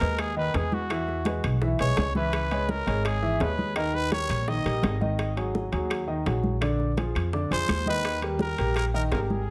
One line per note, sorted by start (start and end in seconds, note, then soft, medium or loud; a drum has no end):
0.00 0.51 D#2 medium
0.00 0.30 G#3 medium
0.00 0.30 G#4 medium
0.00 0.21 A#4 loud
0.00 0.31 B4 medium
0.00 high timbale medium
0.19 0.37 G#4 medium
0.19 high bongo medium
0.19 high conga soft
0.19 high timbale medium
0.19 claves medium
0.37 0.51 D#3 medium
0.37 0.51 D#4 medium
0.37 0.57 B4 medium
0.37 0.52 D#5 medium
0.37 high conga soft
0.54 1.38 E2 medium
0.54 0.83 G#3 medium
0.54 0.84 G#4 medium
0.54 0.75 G#4 medium
0.54 0.84 B4 medium
0.54 high bongo medium
0.54 low bongo medium
0.54 high conga soft
0.54 high timbale medium
0.72 1.45 F#4 medium
0.72 high conga medium
0.90 1.20 E3 medium
0.90 1.20 E4 medium
0.90 1.20 E5 medium
0.90 high bongo medium
0.90 high conga soft
0.90 high timbale medium
0.90 claves medium
1.07 high bongo soft
1.07 high conga soft
1.25 1.56 G#3 medium
1.25 1.56 G#4 medium
1.25 1.56 B4 medium
1.25 high bongo medium
1.25 high conga medium
1.25 high timbale medium
1.44 1.77 B1 medium
1.44 high bongo soft
1.44 high conga soft
1.44 high timbale medium
1.44 claves medium
1.61 1.77 E3 medium
1.61 1.77 E4 medium
1.61 1.77 E5 medium
1.61 high bongo medium
1.61 high conga soft
1.79 1.96 B1 medium
1.79 2.09 G#3 medium
1.79 2.09 G#4 medium
1.79 2.10 B4 medium
1.79 2.13 C#5 medium
1.79 high conga soft
1.79 high timbale medium
1.97 2.81 C#2 medium
1.97 high bongo medium
1.97 low bongo medium
1.97 high conga medium
1.97 high timbale medium
1.97 low timbale medium
1.97 claves medium
2.15 2.45 E3 medium
2.15 2.45 E4 medium
2.15 2.72 B4 medium
2.15 2.45 E5 medium
2.15 high bongo soft
2.15 high conga medium
2.33 high bongo medium
2.33 high conga soft
2.33 high timbale medium
2.33 claves medium
2.51 2.81 G#3 medium
2.51 2.81 G#4 medium
2.51 2.81 C#5 medium
2.51 high conga soft
2.51 high timbale medium
2.69 3.06 A#4 medium
2.69 high bongo medium
2.69 high conga medium
2.86 3.37 G#1 medium
2.86 3.16 G#3 medium
2.86 3.16 G#4 medium
2.86 3.17 C#5 medium
2.86 high timbale medium
3.05 3.43 G#4 medium
3.05 high bongo medium
3.05 high conga soft
3.05 high timbale medium
3.05 claves medium
3.22 3.37 E3 medium
3.22 3.37 E4 medium
3.22 3.38 E5 medium
3.22 high conga soft
3.40 4.24 D#2 medium
3.40 3.70 G#3 medium
3.40 3.70 G#4 medium
3.40 3.77 B4 medium
3.40 3.70 C#5 medium
3.40 high bongo medium
3.40 low bongo medium
3.40 high conga soft
3.40 high timbale medium
3.40 low timbale medium
3.58 high conga medium
3.76 4.05 D#3 medium
3.76 4.06 D#4 medium
3.76 3.96 A#4 medium
3.76 4.06 D#5 medium
3.76 high bongo medium
3.76 high conga soft
3.76 high timbale medium
3.76 claves medium
3.94 4.12 B4 loud
3.94 high bongo soft
3.94 high conga soft
4.12 4.41 G3 medium
4.12 4.42 G4 medium
4.12 4.42 A#4 medium
4.12 4.50 C#5 loud
4.12 high bongo medium
4.12 high conga medium
4.12 high timbale medium
4.29 4.63 A#1 loud
4.29 high bongo soft
4.29 high conga soft
4.29 high timbale medium
4.29 claves medium
4.48 4.62 D#3 medium
4.48 4.63 D#4 medium
4.48 4.63 D#5 medium
4.48 5.02 D#5 medium
4.48 high bongo medium
4.48 high conga soft
4.65 4.82 A#1 medium
4.65 4.95 G3 medium
4.65 4.95 G4 medium
4.65 4.95 A#4 medium
4.65 high conga soft
4.65 high timbale medium
4.83 5.67 G#1 medium
4.83 high bongo medium
4.83 low bongo medium
4.83 high conga medium
4.83 high timbale loud
4.83 low timbale medium
4.83 claves medium
5.01 5.30 D#3 medium
5.01 5.31 D#4 medium
5.01 5.31 D#5 medium
5.01 high bongo soft
5.01 high conga medium
5.19 high bongo medium
5.19 high conga soft
5.19 high timbale medium
5.19 claves medium
5.36 5.66 F#3 medium
5.36 5.66 F#4 medium
5.36 5.66 G#4 medium
5.36 high conga soft
5.36 high timbale medium
5.55 high bongo medium
5.55 high conga medium
5.72 6.22 D#2 medium
5.72 6.02 F#3 medium
5.72 6.02 F#4 medium
5.72 6.02 G#4 medium
5.72 high timbale medium
5.90 high bongo medium
5.90 high conga soft
5.90 high timbale medium
5.90 claves medium
6.07 6.22 D#3 medium
6.07 6.23 D#4 medium
6.07 6.23 D#5 medium
6.07 high conga soft
6.26 7.10 A#1 medium
6.26 6.55 F#3 medium
6.26 6.55 F#4 medium
6.26 6.55 G#4 medium
6.26 high bongo medium
6.26 low bongo medium
6.26 high conga soft
6.26 high timbale medium
6.44 high conga medium
6.61 6.91 D3 medium
6.61 6.91 D4 medium
6.61 6.91 D5 medium
6.61 high bongo medium
6.61 high conga soft
6.61 high timbale medium
6.61 claves medium
6.80 high bongo soft
6.80 high conga soft
6.97 7.27 F3 medium
6.97 7.27 F4 medium
6.97 7.27 G#4 medium
6.97 high bongo medium
6.97 high conga medium
6.97 high timbale medium
7.15 7.49 F2 medium
7.15 high bongo soft
7.15 high conga soft
7.15 high timbale loud
7.15 claves medium
7.33 7.48 D3 medium
7.33 7.48 D4 medium
7.33 7.48 D5 medium
7.33 high bongo medium
7.33 high conga soft
7.51 7.67 F2 medium
7.51 7.80 F3 medium
7.51 7.81 F4 medium
7.51 7.81 G#4 medium
7.51 7.85 C5 loud
7.51 high conga soft
7.51 high timbale medium
7.69 8.52 D#2 medium
7.69 high bongo medium
7.69 low bongo medium
7.69 high conga medium
7.69 high timbale loud
7.69 claves medium
7.86 8.16 D#3 medium
7.86 8.17 D#4 medium
7.86 8.21 B4 loud
7.86 8.17 D#5 medium
7.86 high bongo soft
7.86 high conga medium
8.04 high bongo medium
8.04 high conga soft
8.04 high timbale medium
8.04 claves medium
8.22 8.52 G3 medium
8.22 8.52 G4 medium
8.22 8.52 A#4 medium
8.22 high conga soft
8.22 high timbale medium
8.39 8.74 A#4 loud
8.39 high bongo medium
8.39 high conga medium
8.58 9.08 A#1 medium
8.58 8.88 G3 medium
8.58 8.88 G4 medium
8.58 8.88 A#4 medium
8.58 high timbale medium
8.76 8.85 A#4 loud
8.76 high bongo medium
8.76 high conga soft
8.76 high timbale medium
8.76 claves medium
8.94 9.09 D#3 medium
8.94 9.09 D#4 medium
8.94 9.02 A#4 medium
8.94 9.09 D#5 medium
8.94 high conga soft
9.12 9.45 G#1 medium
9.12 9.41 G3 medium
9.12 9.41 G4 medium
9.12 9.20 A#4 medium
9.12 9.42 A#4 medium
9.12 high bongo medium
9.12 low bongo medium
9.12 high conga soft
9.12 high timbale medium
9.12 low timbale medium
9.30 9.50 G#4 medium
9.30 high conga medium